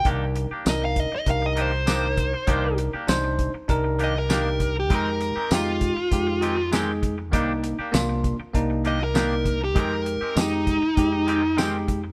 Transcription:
<<
  \new Staff \with { instrumentName = "Lead electric guitar" } { \time 4/4 \key c \minor \tempo 4 = 99 r4 ees''16 f''16 ees''16 ees''16 f''16 ees''16 c''4.~ | c''8 r2 ees''16 bes'4 g'16 | bes'4 f'2 r4 | r2 r8 ees''16 bes'4 g'16 |
bes'4 ees'2 r4 | }
  \new Staff \with { instrumentName = "Tine electric piano" } { \time 4/4 \key c \minor <d' ees' bes'>8 r8 <d' ees' bes'>8 r8 <d' ees' bes'>8 r8 <d' ees' bes'>8 r8 | <d' ees' bes'>8 r8 <d' ees' c''>8 r8 <d' ees' bes'>8 r8 <d' ees' g'>8 r8 | <aes ees' g'>8 r8 <aes ees' g'>8 r8 <aes ees' g'>8 r8 <aes ees' aes'>8 r8 | <bes d' ees'>8 r8 <bes d' f'>8 r8 <bes d' ees'>8 r8 <bes d' ees'>8 r8 |
<aes ees' g'>8 r8 <aes ees' g'>8 r8 <aes ees' g'>8 r8 <aes ees' g'>8 r8 | }
  \new Staff \with { instrumentName = "Clean electric guitar" } { \time 4/4 \key c \minor <ees bes d' g'>16 r8 <bes d' g'>16 r4. <ees bes d' g'>16 r16 <ees bes d' g'>16 r8. | <ees bes d' g'>16 r8 <bes d' g'>16 r4. <ees bes d' g'>16 r16 <ees bes d' g'>16 r8. | <ees aes c' g'>16 r8 <aes c' g'>16 r4. <ees aes c' g'>16 r16 <ees aes c' g'>16 r8. | <ees bes d' g'>16 r8 <bes d' g'>16 r4. <ees bes d' g'>16 r16 <ees bes d' g'>16 r8. |
<ees aes c' g'>16 r8 <aes c' g'>16 r4. <ees aes c' g'>16 r16 <ees aes c' g'>16 r8. | }
  \new Staff \with { instrumentName = "Fingered electric bass" } { \clef bass \time 4/4 \key c \minor c,8. r16 c,8. r16 c,2 | c,8. r16 c,8. r16 c,2 | f,8. r16 f,8. r16 f,2 | c,8. r16 c,8. r16 c,2 |
f,8. r16 f,8. r16 f,2 | }
  \new DrumStaff \with { instrumentName = "Drums" } \drummode { \time 4/4 <hh bd>8 hh8 <hh sn tamb>8 <hh bd>8 <hh bd>8 hh8 <hh sn tamb>8 <hh bd>8 | <hh bd>8 hh8 <hh sn tamb>8 <hh bd>8 <hh bd>8 hh8 <hh sn tamb>8 <hh bd>8 | <hh bd>8 hh8 <hh sn tamb>8 <hh bd>8 <hh bd>8 hh8 <hh sn tamb>8 <hh bd>8 | <hh bd>8 hh8 <hh sn tamb>8 <hh bd>8 <hh bd>8 hh8 <hh sn tamb>8 <hh bd>8 |
<hh bd>8 hh8 <hh sn tamb>8 <hh bd>8 <hh bd>8 hh8 <hh sn tamb>8 <hh bd>8 | }
>>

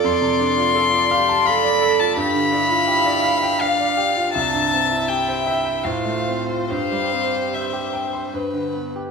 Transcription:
<<
  \new Staff \with { instrumentName = "Violin" } { \time 3/4 \key c \major \tempo 4 = 80 c'''2 b''8. a''16 | b''2 f''4 | a''4 g''4 f''8. c''16 | f''4 e''4 r4 | }
  \new Staff \with { instrumentName = "Violin" } { \time 3/4 \key c \major d''2. | f''2. | e''2 c''4~ | c''2 b'8. r16 | }
  \new Staff \with { instrumentName = "Cello" } { \time 3/4 \key c \major a'4 f'8 g'8 a'4 | g'8 e'4. d'4~ | d'4 e'4 f'4 | g'2~ g'8 r8 | }
  \new Staff \with { instrumentName = "Grand piano" } { \time 3/4 \key c \major f,16 c16 d'16 f'16 a'16 d''16 f''16 a''16 f''16 d''16 a'16 f'16 | g,16 d16 d'16 f'16 g'16 d''16 f''16 g''16 f''16 d''16 g'16 f'16 | c,16 g,16 c'16 e'16 g'16 c''16 e''16 g''16 a,16 a16 c'16 f'16 | g,16 g16 c'16 g'16 c''16 g'16 g''16 c'''16 g,16 d16 b16 g'16 | }
>>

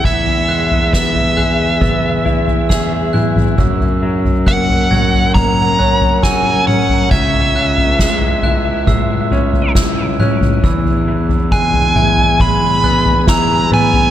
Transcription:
<<
  \new Staff \with { instrumentName = "Glockenspiel" } { \time 4/4 \key e \lydian \tempo 4 = 68 gis'''8 fis'''4 fis'''8 e'''4 e'''8 fis'''8 | e'''4 fis'''8 gis'''4 fis'''8 e'''4 | gis'''8 fis'''4 fis'''8 e'''4 e'''8 fis'''8 | e'''4 fis'''8 gis'''4 fis'''8 e'''4 | }
  \new Staff \with { instrumentName = "Lead electric guitar" } { \time 4/4 \key e \lydian e''4 e''2~ e''8 r8 | r4 fis''4 ais''4 gis''8 fis''8 | e''2. r4 | r4 gis''4 b''4 ais''8 gis''8 | }
  \new Staff \with { instrumentName = "Clean electric guitar" } { \time 4/4 \key e \lydian <e b e' gis'>8 gis8 b8 gis'8 b8 e'8 gis'8 e'8 | fis,8 fis8 ais8 fis'8 ais8 cis'8 fis'8 cis'8 | cis8 cis8 gis8 e'8 gis8 cis'8 e'8 cis'8 | e8 e8 gis8 e'8 gis8 b8 e'8 b8 | }
  \new Staff \with { instrumentName = "Fingered electric bass" } { \clef bass \time 4/4 \key e \lydian e,1 | fis,1 | cis,1 | e,1 | }
  \new DrumStaff \with { instrumentName = "Drums" } \drummode { \time 4/4 <bd tomfh>16 tomfh8 tomfh16 <bd sn>16 tomfh16 tomfh8 <bd tomfh toml>8 tomfh16 tomfh16 <bd sn>8 toml16 <tomfh toml>16 | <bd tomfh>16 tomfh8 tomfh16 bd16 tomfh16 <tomfh toml>16 tomfh16 <bd tomfh toml>8 tomfh16 tomfh16 <bd sn>8 toml16 tomfh16 | <bd tomfh>16 tomfh8 tomfh16 <bd sn>16 tomfh16 tomfh8 <bd tomfh toml>8 tomfh16 tomfh16 <bd sn>8 toml16 <tomfh toml>16 | <bd tomfh>16 tomfh8 tomfh16 bd16 tomfh16 <tomfh toml>16 tomfh16 <bd tomfh toml>8 tomfh16 tomfh16 <bd sn>8 toml16 tomfh16 | }
>>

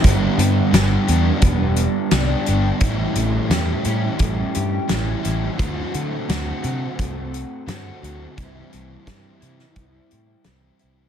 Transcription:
<<
  \new Staff \with { instrumentName = "Overdriven electric guitar" } { \time 4/4 \key g \major \tempo 4 = 86 <g, d g b d' g'>4 <g b d' g'>8 <g b d' g'>4. <g b d' g'>8 <g b d' g'>8 | <a, e g cis' g'>4 <e g cis' g'>8 <g cis' g'>4. <e g cis' g'>8 <g cis' g'>8 | <d a c' fis'>4 <d a c' fis'>8 <a c' fis'>4. <d a c' fis'>8 <a c' fis'>8 | <c e g c' e'>4 <e g c' e'>8 <g c' e'>4. <e g c' e'>8 <g c' e'>8 | }
  \new Staff \with { instrumentName = "Twelve-string acoustic guitar" } { \time 4/4 \key g \major r8 b4 d'8 b4 d'4 | e8 a8 g'8 cis'8 a8 g'8 cis'8 e8 | fis8 a8 fis'8 c'8 a8 fis'8 c'8 fis8 | e4 g'8 e'4 g'8 e'8 e8 | }
  \new Staff \with { instrumentName = "Overdriven electric guitar" } { \time 4/4 \key g \major <g, d g b d'>4 <d g b d'>8 <g b d'>4. <d g b d'>8 <g b d'>8 | <a, e g cis' e'>4 <e g cis' e'>8 <g cis' e'>4. <e g cis' e'>8 <g cis' e'>8 | <d a c' fis'>4 <d a c' fis'>8 <a c' fis'>4. <d a c' fis'>8 <a c' fis'>8 | <c e g c' e'>4 <e g c' e'>8 <g c' e'>4. <e g c' e'>8 <g c' e'>8 | }
  \new Staff \with { instrumentName = "Picked electric bass" } { \clef bass \time 4/4 \key g \major g,,8 g,8 g,,8 e,8 e,,4 c,8 g,,8 | a,,8 a,,8 e,8 a,8 a,,8 g,8 a,,8 a,,8 | d,8 d8 d,8 c8 c,4 g,8 d,8 | c,8 c,8 g,8 c8 c,8 a,8 c,8 c,8 | }
  \new DrumStaff \with { instrumentName = "Drums" } \drummode { \time 4/4 <hh bd>8 hh8 <hh sn>8 hh8 <hh bd>8 hh8 <hh sn>8 hh8 | <hh bd>8 hh8 <hh sn>8 hh8 <hh bd>8 hh8 <hh sn>8 hh8 | <hh bd>8 hh8 <hh sn>8 hh8 <hh bd>8 hh8 <hh sn>8 hh8 | <hh bd>8 hh8 <hh bd sn>8 hh16 sn16 <hh bd>8 hh8 <hh sn>8 hh8 | }
>>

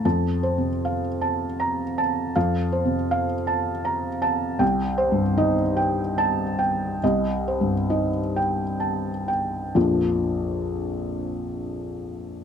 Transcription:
<<
  \new Staff \with { instrumentName = "Felt piano" } { \time 3/4 \key bes \major \tempo 4 = 76 a''8 c''8 f''8 a''4 a''8 | f''8 c''8 f''8 a''8 bes''8 a''8 | g''8 c''8 ees''8 g''4 g''8 | ees''8 c''8 ees''8 g''8 a''8 g''8 |
r2. | }
  \new Staff \with { instrumentName = "Felt piano" } { \clef bass \time 3/4 \key bes \major \tuplet 3/2 { f,4 c8 } r4 bes''8 r8 | \tuplet 3/2 { f,4 c8 } r2 | \tuplet 3/2 { c,4 g,8 } ees'8 r8 a''8 r8 | \tuplet 3/2 { c,4 g,8 } ees'8 r4. |
<bes,, f, f bes d' f'>2. | }
>>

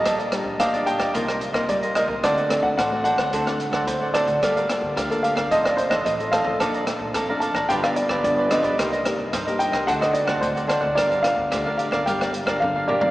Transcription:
<<
  \new Staff \with { instrumentName = "Grand piano" } { \time 4/4 \key g \minor \tempo 4 = 110 ees''4 f''8 g''4. d''8 ees''8 | d''8. fis''16 fis''8 fis''4. c''8 d''8~ | d''4. f''8 ees''16 d''16 c''8 ees''8 f''8~ | f''4. a''8 g''16 f''16 d''8 d''8 ees''8~ |
ees''4. g''8 fis''16 ees''16 d''8 c''8 d''16 d''16 | d''8 f''4 f''8 g''4 f''8 d''16 d''16 | }
  \new Staff \with { instrumentName = "Cavaquinho" } { \time 4/4 \key g \minor <d' g' d'' ees''>16 <g' d'' ees''>16 r8 <d' g' d'' ees''>16 <g' d'' ees''>16 <d' g' d'' ees''>16 <g' d'' ees''>16 <ees' bes' c'' ees''>16 <bes' c'' ees''>16 r16 <bes' c'' ees''>8 <bes' c'' ees''>16 <ees' bes' c'' ees''>16 <bes' c'' ees''>16 | <d' c'' d'' fis''>16 <c'' d'' fis''>16 r8 <d' c'' d'' fis''>16 <c'' d'' fis''>16 <d' c'' d'' fis''>16 <c'' d'' fis''>16 <d' c'' d'' fis''>16 <c'' d'' fis''>16 r16 <c'' d'' fis''>8 <c'' d'' fis''>16 <d' c'' d'' fis''>16 <c'' d'' fis''>16 | <g' bes' d'' f''>16 <bes' d'' f''>16 r8 <g' bes' d'' f''>16 <bes' d'' f''>16 <g' bes' d'' f''>16 <bes' d'' f''>16 <f' a' c'' ees''>16 <a' c'' ees''>16 r16 <a' c'' ees''>8 <a' c'' ees''>16 <f' a' c'' ees''>16 <a' c'' ees''>16 | <a' d'' f'' bes''>16 <d'' f'' bes''>16 r8 <a' d'' f'' bes''>16 <d'' f'' bes''>16 <a' d'' f'' bes''>16 <d'' f'' bes''>16 <f' g' b' d''>16 <g' b' d''>16 r16 <g' b' d''>8 <g' b' d''>16 <f' g' b' d''>16 <g' b' d''>16 |
<ees' bes' c'' ees''>16 <bes' c'' ees''>16 r8 <ees' bes' c'' ees''>16 <bes' c'' ees''>16 <ees' bes' c'' ees''>16 <bes' c'' ees''>16 <d' c'' d'' fis''>16 <c'' d'' fis''>16 r16 <c'' d'' fis''>8 <c'' d'' fis''>16 <d' c'' d'' fis''>16 <c'' d'' fis''>16 | <g' bes' d'' f''>16 <bes' d'' f''>16 r8 <g' bes' d'' f''>16 <bes' d'' f''>16 <g' bes' d'' f''>16 <bes' d'' f''>16 <g' bes' d'' f''>16 <bes' d'' f''>16 r16 <bes' d'' f''>8 <bes' d'' f''>16 <g' bes' d'' f''>16 <bes' d'' f''>16 | }
  \new Staff \with { instrumentName = "Nylon-string guitar" } { \time 4/4 \key g \minor << { <g f'>8 <g d' f'>8 r16 <g d' f'>8. <bes ees' f'>8. <bes ees' f'>8. <bes ees' f'>16 r16 | <a c' fis'>16 r16 <a c' fis'>8 r16 <a c' fis'>8. <a c' fis'>8. <a c' fis'>8. <a c' fis'>8 | <bes f' a'>16 r16 <bes f' a'>8. <bes f' a'>8. <f c' ees'>8. <f c' ees'>8. <f c' ees'>8 | <f a d'>8 <f a d'>8 r16 <f a d'>8. <f b d'>8. <f b d'>8. <f b d'>8 |
<bes ees' g'>8 <bes ees' g'>8 r16 <bes ees' g'>8. <a c' fis'>8 r16 <a c' fis'>8. <a c' fis'>16 r16 | <d' f' bes'>16 r16 <d' f' bes'>8. <d' f' bes'>8. <d' f' bes'>8 r16 <d' f' bes'>8. <d' f' bes'>16 r16 | } \\ { bes,4 bes,4 c4 g4 | d4 a,4 d4 a,4 | g4 d4 a,4 a,4 | bes,4 f,4 g,4 d4 |
c4 g,4 d4 a,4 | g4 d4 g4 d4 | } >> }
  \new Staff \with { instrumentName = "Upright bass" } { \clef bass \time 4/4 \key g \minor bes,,8. bes,,16 bes,,8. bes,,16 c,8. c,16 c,8. c,16 | d,8. d,16 a,,8. d,16 d,8. d,16 d,8. d,16 | g,,8. g,,16 d,8. g,,16 a,,8. a,,16 a,,8. a,,16 | bes,,8. bes,,16 f,8. a,,16 g,,8. g,,16 g,,8. b,,16 |
c,8. c,16 g,8. c,16 d,8. d,16 d,8. d,16 | g,,8. g,,16 d,8. g,,16 g,,8. g,,16 g,,8. a,,16 | }
  \new DrumStaff \with { instrumentName = "Drums" } \drummode { \time 4/4 <hh bd ss>16 hh16 <hh ss>16 bd16 <hh bd ss>16 hh16 hh16 <hh bd ss>16 <hh bd>16 <hh ss>16 hh16 <bd ss>16 <hh bd>16 hh16 <hh ss>16 bd16 | <hh bd ss>16 hh16 <hh ss>16 bd16 <hh bd ss>8 hh16 <bd ss>16 <hh bd>16 <hh ss>16 hh16 <bd ss>16 <hh bd>8 <hh ss>16 <hh bd>16 | <hh bd ss>16 hh16 <hh ss>16 bd16 <hh bd ss>16 hh16 hh16 <hh bd ss>16 <hh bd>16 <hh ss>16 hh16 <bd ss>16 <hh bd>16 hh16 <hh ss>16 bd16 | <hh bd ss>16 hh16 <hh ss>16 bd16 <hh bd ss>8 hh16 <bd ss>16 <hh bd>16 <hh ss>16 hh16 <bd ss>16 <hh bd>8 <hh ss>16 <hh bd>16 |
<hh bd ss>16 hh16 <hh ss>16 bd16 <hh bd ss>16 hh16 hh16 <hh bd ss>16 <hh bd>16 <hh ss>16 hh16 <bd ss>16 <hh bd>16 hh16 <hh ss>16 bd16 | <hh bd ss>16 hh16 <hh ss>16 bd16 <hh bd ss>8 hh16 <bd ss>16 <hh bd>16 <hh ss>16 hh16 <bd ss>16 <bd tommh>16 bd16 toml16 tomfh16 | }
>>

